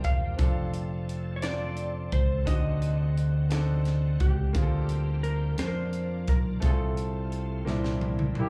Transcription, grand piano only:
0.00 0.35 C3 medium
0.00 0.16 C4 medium
0.00 0.16 D4 medium
0.00 0.17 F4 medium
0.00 0.17 A#4 medium
0.37 1.19 C4 medium
0.37 1.20 D4 medium
0.37 1.20 F4 medium
0.37 1.21 A4 medium
1.42 2.24 C4 medium
1.42 2.24 D4 medium
1.42 2.25 F4 soft
1.42 2.25 C5 medium
2.45 3.47 D3 medium
2.45 3.27 C4 medium
2.45 3.28 D4 medium
2.45 3.28 D#4 medium
2.45 3.29 F#4 medium
3.49 4.31 C4 medium
3.49 4.31 D4 medium
3.49 4.32 D#4 medium
3.49 4.32 A4 medium
4.53 5.54 D3 medium
4.53 5.35 A#3 medium
4.53 5.36 C4 medium
4.53 5.36 F4 medium
4.53 4.62 G#4 medium
4.62 5.40 A4 medium
5.57 6.39 A#3 medium
5.57 6.40 D4 medium
5.57 6.40 F4 medium
5.57 5.66 A4 medium
5.67 6.44 A#4 medium
6.60 7.62 C3 medium
6.60 7.42 A3 medium
6.60 7.43 C4 medium
6.60 7.44 F4 medium
6.60 6.69 G#4 medium
6.70 7.47 A4 medium
7.65 8.49 A#2 medium
7.65 8.47 A#3 medium
7.65 8.47 C4 medium
7.65 8.48 D4 medium
7.65 8.48 E4 medium

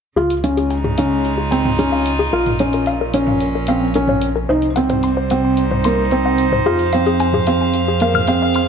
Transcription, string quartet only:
0.18 2.33 C#3 soft
0.45 2.33 G#3 medium
0.71 3.20 D#4 medium
1.13 3.19 F4 medium
2.33 4.49 A#2 medium
2.97 4.50 C#4 medium
3.04 4.50 F3 soft
4.49 6.65 C3 medium
4.70 6.66 G3 medium
4.85 8.68 C5 medium
5.48 7.53 D#4 medium
6.68 8.68 F3 medium
6.83 8.68 F5 medium
7.40 8.68 G#4 medium

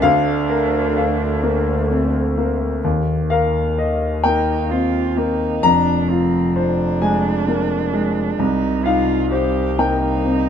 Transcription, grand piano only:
0.02 2.79 D2 medium
0.02 0.95 F5 medium
0.50 1.24 A#4 soft
0.97 1.71 F5 soft
1.43 2.18 A#3 soft
1.91 2.37 C4 soft
2.37 2.83 A#3 soft
2.84 5.60 D#2 medium
3.30 4.05 A#4 soft
3.30 4.20 F5 medium
3.78 4.52 D#5 soft
4.24 4.99 A#3 soft
4.24 5.59 G5 medium
4.71 5.17 C4 soft
5.18 5.63 A#3 soft
5.63 8.35 F2 medium
5.63 6.97 A#5 loud
6.10 6.83 F4 soft
6.56 7.29 C5 medium
7.02 7.75 G#3 soft
7.02 8.35 G#5 medium
7.48 7.93 A#3 soft
7.93 8.39 G#3 soft
8.39 10.49 C2 medium
8.86 9.60 D#4 soft
8.86 9.75 F5 medium
9.32 10.06 C5 soft
9.79 10.49 A#3 soft
9.79 10.49 G5 medium
10.25 10.49 C4 soft

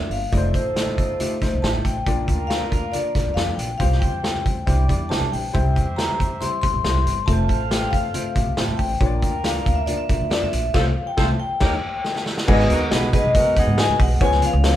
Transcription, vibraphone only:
0.00 0.11 E5 medium
0.11 0.33 F5 medium
0.34 0.43 D5 medium
0.54 1.66 C5 medium
1.62 1.85 A5 medium
1.85 2.52 G5 medium
2.47 2.93 F5 medium
2.92 3.37 D5 medium
3.34 3.58 F5 medium
3.56 3.79 G5 medium
3.78 3.99 F5 medium
3.99 5.13 G5 medium
5.09 5.32 A5 medium
5.32 5.99 G5 medium
5.96 6.42 A#5 medium
6.41 6.60 C6 loud
6.62 7.29 C6 loud
7.26 7.67 A5 loud
7.71 7.93 G5 medium
7.91 8.59 F5 medium
8.57 8.78 A5 medium
8.77 9.45 G5 medium
9.44 9.78 F5 medium
9.75 9.87 E5 medium
9.86 9.98 D5 medium
9.97 10.28 E5 medium
10.30 10.42 D5 medium
10.42 10.72 E5 medium
10.74 11.08 F5 medium
11.07 11.18 G5 medium
11.18 11.40 A5 medium
11.40 12.22 G5 medium
13.16 13.59 D#5 loud
13.58 13.77 F#5 loud
13.79 13.88 G#5 loud
14.01 14.20 F#5 medium
14.25 14.45 G#5 loud
14.46 14.76 F5 loud

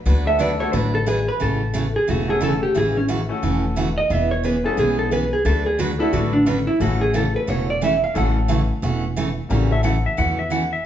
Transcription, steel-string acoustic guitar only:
0.06 0.27 D3 medium
0.06 0.27 F#3 medium
0.06 0.27 A3 medium
0.06 0.27 D4 medium
0.06 0.27 F#4 medium
0.06 0.27 B4 medium
0.39 0.50 D3 medium
0.39 0.50 F#3 medium
0.39 0.51 A3 medium
0.39 0.51 D4 medium
0.39 0.51 F#4 medium
0.39 0.51 B4 medium
0.73 0.94 D3 medium
0.73 0.94 F#3 medium
0.73 0.94 A3 medium
0.73 0.94 D4 medium
0.73 0.95 F#4 medium
0.73 0.95 B4 medium
1.06 1.18 D3 medium
1.06 1.18 F#3 medium
1.06 1.18 A3 medium
1.06 1.18 D4 medium
1.06 1.18 F#4 medium
1.06 1.18 B4 medium
1.40 1.61 C#3 medium
1.40 1.61 E3 medium
1.40 1.62 A3 medium
1.40 1.62 C#4 medium
1.40 1.62 F#4 medium
1.74 1.85 C#3 medium
1.74 1.85 E3 medium
1.74 1.86 A3 medium
1.74 1.86 C#4 medium
1.74 1.86 F#4 medium
2.07 2.29 C#3 medium
2.07 2.29 E3 medium
2.07 2.29 A3 medium
2.07 2.29 C#4 medium
2.07 2.29 F#4 medium
2.41 2.52 C#3 medium
2.41 2.52 E3 medium
2.41 2.53 A3 medium
2.41 2.53 C#4 medium
2.41 2.53 F#4 medium
2.75 2.96 C#3 medium
2.75 2.96 E3 medium
2.75 2.96 A3 medium
2.75 2.96 C#4 medium
2.75 2.97 F#4 medium
3.08 3.20 C#3 medium
3.08 3.20 E3 medium
3.08 3.20 A3 medium
3.08 3.20 C#4 medium
3.08 3.21 F#4 medium
3.43 3.64 C#3 medium
3.43 3.64 E3 medium
3.43 3.64 A3 medium
3.43 3.64 C#4 medium
3.43 3.64 F#4 medium
3.76 3.88 C#3 medium
3.76 3.88 E3 medium
3.76 3.88 A3 medium
3.76 3.88 C#4 medium
3.76 3.88 F#4 medium
4.10 4.31 E3 medium
4.10 4.31 B3 medium
4.10 4.32 C#4 medium
4.10 4.32 G#4 medium
4.44 4.55 E3 medium
4.44 4.55 B3 medium
4.44 4.56 C#4 medium
4.44 4.56 G#4 medium
4.77 4.99 E3 medium
4.77 4.99 B3 medium
4.77 4.99 C#4 medium
4.77 4.99 G#4 medium
5.11 5.23 E3 medium
5.11 5.23 B3 medium
5.11 5.23 C#4 medium
5.11 5.23 G#4 medium
5.45 5.66 D3 medium
5.45 5.66 F#3 medium
5.45 5.66 A3 medium
5.45 5.67 D4 medium
5.45 5.67 F#4 medium
5.45 5.67 B4 medium
5.78 5.90 D3 medium
5.78 5.90 F#3 medium
5.78 5.90 A3 medium
5.78 5.90 D4 medium
5.78 5.91 F#4 medium
5.78 5.91 B4 medium
6.13 6.34 D3 medium
6.13 6.34 F#3 medium
6.13 6.34 A3 medium
6.13 6.34 D4 medium
6.13 6.34 F#4 medium
6.13 6.34 B4 medium
6.46 6.58 D3 medium
6.46 6.58 F#3 medium
6.46 6.58 A3 medium
6.46 6.58 D4 medium
6.46 6.58 F#4 medium
6.46 6.58 B4 medium
6.80 7.01 C#3 medium
6.80 7.02 E3 medium
6.80 7.02 A3 medium
6.80 7.02 C#4 medium
6.80 7.02 F#4 medium
7.14 7.25 C#3 medium
7.14 7.25 E3 medium
7.14 7.25 A3 medium
7.14 7.26 C#4 medium
7.14 7.26 F#4 medium
7.47 7.69 C#3 medium
7.47 7.69 E3 medium
7.47 7.69 A3 medium
7.47 7.69 C#4 medium
7.47 7.69 F#4 medium
7.81 7.93 C#3 medium
7.81 7.93 E3 medium
7.81 7.93 A3 medium
7.81 7.93 C#4 medium
7.81 7.93 F#4 medium
8.15 8.36 C#3 medium
8.15 8.36 E3 medium
8.15 8.37 A3 medium
8.15 8.37 C#4 medium
8.15 8.37 F#4 medium
8.48 8.60 C#3 medium
8.48 8.60 E3 medium
8.48 8.60 A3 medium
8.48 8.60 C#4 medium
8.48 8.61 F#4 medium
8.82 9.04 C#3 medium
8.82 9.04 E3 medium
8.82 9.04 A3 medium
8.82 9.04 C#4 medium
8.82 9.04 F#4 medium
9.16 9.28 C#3 medium
9.16 9.28 E3 medium
9.16 9.28 A3 medium
9.16 9.28 C#4 medium
9.16 9.28 F#4 medium
9.50 9.71 C#3 medium
9.50 9.71 E3 medium
9.50 9.71 A3 medium
9.50 9.72 C#4 medium
9.50 9.72 F#4 medium
9.83 9.95 C#3 medium
9.83 9.95 E3 medium
9.83 9.95 A3 medium
9.83 9.95 C#4 medium
9.83 9.95 F#4 medium
10.17 10.38 C#3 medium
10.17 10.39 E3 medium
10.17 10.39 A3 medium
10.17 10.39 C#4 medium
10.17 10.39 F#4 medium
10.50 10.62 C#3 medium
10.50 10.62 E3 medium
10.50 10.63 A3 medium
10.50 10.63 C#4 medium
10.50 10.63 F#4 medium

